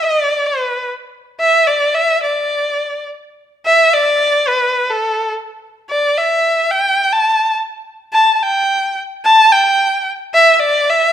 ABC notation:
X:1
M:2/4
L:1/16
Q:1/4=108
K:none
V:1 name="Erhu"
d3 B3 z2 | z2 e2 d2 e2 | d6 z2 | z2 e2 d4 |
B3 A3 z2 | z2 d2 e4 | g3 a3 z2 | z2 a3/2 a/2 g4 |
z2 a2 g4 | z2 e3/2 e/2 d2 e2 |]